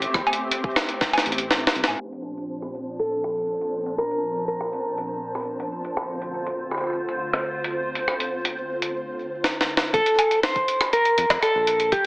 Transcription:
Already playing: A3 C4 G4 C5
0.02 closed hi-hat
0.14 E2, kick, cross-stick
0.27 cowbell
0.33 closed hi-hat
0.51 closed hi-hat
0.64 kick
0.76 cross-stick, snare
0.89 closed hi-hat
1.01 kick, snare
1.13 closed hi-hat, cowbell
1.18 snare, closed hi-hat
1.26 A1, closed hi-hat
1.32 closed hi-hat
1.38 closed hi-hat
1.51 snare
1.67 snare
1.75 C2, closed hi-hat
1.84 snare
1.88 A2, cowbell
2.00 A#2 F3 C4 D4 C5 A5
2.13 closed hi-hat
2.37 closed hi-hat
2.62 cross-stick
2.75 closed hi-hat
2.99 A4, closed hi-hat
3.24 cross-stick, closed hi-hat
3.61 closed hi-hat
3.86 closed hi-hat
3.98 A#4, cross-stick
4.11 closed hi-hat
4.48 A#4, closed hi-hat
4.61 cross-stick
4.73 closed hi-hat
4.98 closed hi-hat
5.35 cross-stick, closed hi-hat
5.38 closed hi-hat
5.40 closed hi-hat
5.43 closed hi-hat
5.45 closed hi-hat
5.60 closed hi-hat
5.85 closed hi-hat
5.97 D2 D3 F4 C5, cross-stick
6.22 closed hi-hat
6.47 closed hi-hat
6.71 cross-stick
6.75 cross-stick
6.78 cross-stick, closed hi-hat
6.81 cross-stick
6.84 cross-stick
6.87 cross-stick
6.90 cross-stick
6.93 cross-stick
7.09 closed hi-hat
7.33 cross-stick, closed hi-hat
7.64 closed hi-hat
7.95 closed hi-hat
8.08 cross-stick
8.20 closed hi-hat
8.45 closed hi-hat
8.82 closed hi-hat
9.44 snare
9.61 snare
9.77 snare
9.94 A#1 A4, kick, closed hi-hat
10.06 closed hi-hat
10.19 closed hi-hat, cowbell
10.31 closed hi-hat
10.43 C5, snare, closed hi-hat
10.56 kick, closed hi-hat
10.68 closed hi-hat
10.81 cross-stick, closed hi-hat
10.93 A#4, closed hi-hat
11.05 closed hi-hat
11.18 F2, closed hi-hat
11.30 F2, kick, snare, closed hi-hat
11.43 A4, cross-stick, closed hi-hat
11.55 A#1
11.67 closed hi-hat
11.80 closed hi-hat
11.92 G4, kick, closed hi-hat

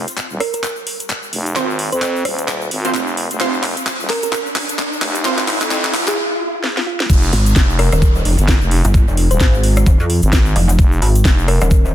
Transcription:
Already playing: riser
0.08 closed hi-hat, shaker
0.17 clap, closed hi-hat, shaker
0.30 D#1, shaker
0.40 A#4, cross-stick, open hi-hat
0.53 A#4, closed hi-hat, shaker
0.63 clap, closed hi-hat, shaker
0.76 shaker
0.87 open hi-hat
1.00 closed hi-hat, shaker
1.09 clap, closed hi-hat, shaker
1.23 shaker
1.33 F1, open hi-hat
1.46 closed hi-hat, shaker
1.56 G#1 C4 F4 C5, clap, closed hi-hat, shaker
1.70 shaker
1.79 open hi-hat
1.92 F2 C5, closed hi-hat, shaker
2.02 clap, closed hi-hat, shaker
2.16 shaker
2.25 D#1, cross-stick, open hi-hat
2.39 closed hi-hat, shaker
2.48 clap, closed hi-hat, shaker
2.61 shaker
2.71 G#1, open hi-hat
2.85 C4 F4 C5, closed hi-hat, shaker
2.94 F1, clap, closed hi-hat, shaker
3.07 shaker
3.17 open hi-hat
3.31 F1, closed hi-hat, shaker
3.40 F1 C4 F4 C5, clap, closed hi-hat, shaker
3.54 shaker
3.63 clap, open hi-hat
3.77 closed hi-hat, shaker
3.87 clap, closed hi-hat, shaker
4.00 D#1, shaker
4.10 A#4, clap, open hi-hat
4.23 A#4, closed hi-hat, shaker
4.33 clap, closed hi-hat, shaker
4.46 shaker
4.56 clap, open hi-hat
4.69 closed hi-hat, shaker
4.78 clap, closed hi-hat, shaker
4.93 shaker
5.02 F1, clap, open hi-hat
5.15 closed hi-hat, shaker
5.25 G#1 C4 F4 C5, clap, closed hi-hat, shaker
5.39 clap, shaker
5.48 clap, open hi-hat
5.61 F2, clap, shaker
5.71 clap, closed hi-hat, shaker
5.85 clap, shaker
5.94 F1, clap, open hi-hat
6.08 G#4, clap, closed hi-hat, shaker
6.17 G#4
6.64 snare
6.77 F4, snare
6.87 F4
7.00 snare
7.10 F1, kick, closed hi-hat, crash, downlifter, shaker
7.23 shaker
7.33 G#1, open hi-hat
7.46 closed hi-hat, shaker
7.56 F1, kick, snare, closed hi-hat, shaker
7.70 shaker
7.79 A#4, cross-stick, open hi-hat
7.92 D#1 A#4, cross-stick, closed hi-hat, shaker
8.02 kick, closed hi-hat, shaker
8.15 shaker
8.25 F1, open hi-hat
8.38 G1, closed hi-hat, shaker
8.48 kick, snare, closed hi-hat, shaker
8.62 F1, shaker
8.71 open hi-hat
8.85 G1, closed hi-hat, shaker
8.94 kick, closed hi-hat, shaker
9.08 F1, shaker
9.17 open hi-hat
9.31 D#1 C5, closed hi-hat, shaker
9.40 G#1, kick, snare, closed hi-hat, shaker
9.54 shaker
9.63 open hi-hat
9.76 cross-stick, closed hi-hat, shaker
9.86 D#1, kick, closed hi-hat, shaker
10.00 F2, shaker
10.10 open hi-hat
10.22 G#1, closed hi-hat, shaker
10.33 kick, snare, closed hi-hat, shaker
10.46 shaker
10.56 F1, open hi-hat
10.69 closed hi-hat, shaker
10.79 F1, kick, closed hi-hat, shaker
10.92 shaker
11.02 G#1, open hi-hat
11.15 closed hi-hat, shaker
11.25 F1, kick, snare, closed hi-hat, shaker
11.39 shaker
11.48 A#4, cross-stick, open hi-hat
11.61 D#1 A#4, cross-stick, closed hi-hat, shaker
11.71 kick, closed hi-hat, shaker
11.85 shaker

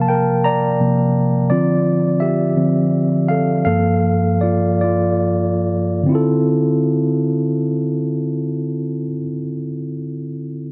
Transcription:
Already playing: C3 F3 A#3 A#4 F5
0.01 A5
0.08 A#4 G5
0.44 D5 A#5
0.81 C3 F3 A#3
1.50 D3 F3 C4 F4 D5
2.20 G4 E5
2.56 D3 F3 C4
3.28 A4 F5
3.65 G2 F3 A#3 A4 F5
4.41 F4 D5
4.81 F4 D5
6.03 D3 C4
6.09 E4 F4
6.15 A4

